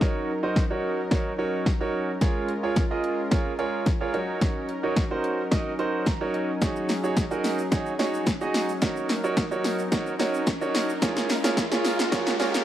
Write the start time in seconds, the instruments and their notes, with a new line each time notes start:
Already playing: supersaw synth F#3 C#4 D#4
0.01 grand piano D#4 F#4 A#4 C#5, supersaw synth A#4, kick, snare
0.43 grand piano D#4 F#4 A#4 C5
0.56 kick, snare
0.70 grand piano D#4 F#4 A#4 C#5
1.11 grand piano D#4 F#4 A#4 C#5, kick, snare
1.38 grand piano D#4 F#4 A#4 C#5
1.66 kick, snare
1.81 grand piano D#4 F#4 A#4 C#5
2.21 supersaw synth G#3 F4 A#4, grand piano F4 G#4 A#4 C#5, kick, snare, closed hi-hat
2.48 closed hi-hat
2.63 grand piano F4 G#4 A#4 C#5
2.76 kick, snare, closed hi-hat
2.91 grand piano F4 G#4 A#4 D#5
3.04 closed hi-hat
3.31 grand piano F4 G#4 A#4 C#5, kick, snare, closed hi-hat
3.59 grand piano F4 G#4 A#4 C#5, closed hi-hat
3.86 kick, snare, closed hi-hat
4.01 grand piano F4 G#4 A#4 C#5
4.14 supersaw synth F#3 D#4, grand piano D#4 F#4 A#4 C#5, closed hi-hat
4.41 kick, snare, closed hi-hat
4.69 closed hi-hat
4.83 grand piano D#4 F#4 A#4 C#5
4.96 kick, snare, closed hi-hat
5.11 grand piano D#4 F#4 A#4 C5
5.24 closed hi-hat
5.51 grand piano D#4 F#4 A#4 D#5, kick, snare, closed hi-hat
5.79 grand piano D#4 F#4 A#4 C5, closed hi-hat
6.06 grand piano A#5, kick, snare, closed hi-hat
6.21 grand piano D#4 F#4 A#4 C#5
6.34 grand piano D#5, closed hi-hat
6.61 grand piano D#4 F#4 G#4 C#5, supersaw synth G#4, kick, snare, closed hi-hat, riser, shaker
6.76 shaker
6.89 snare, open hi-hat, shaker
7.04 grand piano D#4 F#4 G#4 C#5, shaker
7.17 kick, snare, closed hi-hat, shaker
7.31 grand piano D#4 F#4 G#4 A#4, shaker
7.44 snare, open hi-hat, shaker
7.59 shaker
7.71 grand piano D#4 F#4 G#4 C#5, kick, snare, closed hi-hat, shaker
7.86 shaker
7.99 grand piano D#4 F#4 G#4 C#5, snare, open hi-hat, shaker
8.14 shaker
8.27 kick, snare, closed hi-hat, shaker
8.41 grand piano D#4 F#4 G#4 D#5, shaker
8.54 snare, open hi-hat, shaker
8.69 shaker
8.82 grand piano D#4 F#4 A#4 C#5, supersaw synth A#4, kick, snare, closed hi-hat, shaker
8.96 shaker
9.09 snare, open hi-hat, shaker
9.24 grand piano D#4 F#4 A#4 C#5, shaker
9.37 kick, snare, closed hi-hat, shaker
9.51 grand piano D#4 F#4 A#4 C#5, shaker
9.64 snare, open hi-hat, shaker
9.79 shaker
9.92 grand piano D#4 F#4 A#4 C#5, kick, snare, closed hi-hat, shaker
10.06 shaker
10.19 grand piano D#4 F#4 A#4 C#5, snare, open hi-hat, shaker
10.34 shaker
10.47 kick, snare, closed hi-hat, shaker
10.61 grand piano D#4 F#4 A#4 C#5, shaker
10.75 snare, open hi-hat, shaker
10.89 shaker
11.02 supersaw synth G#3 C#4 F4, grand piano F4 G#4 A#4 C#5, kick, snare, closed hi-hat, shaker
11.17 snare, shaker
11.29 snare, open hi-hat, shaker
11.44 grand piano F4 G#4 A#4 C#5, snare, shaker
11.57 kick, snare, closed hi-hat, shaker
11.71 grand piano F4 G#4 A#4 C#5, snare, shaker
11.85 snare, open hi-hat, shaker
11.99 snare, shaker
12.12 grand piano F4 G#4 A#4 C#5, kick, snare, closed hi-hat, shaker
12.27 snare, shaker
12.39 grand piano F4 G#4 A#4 C#5, snare, open hi-hat, shaker
12.54 snare, shaker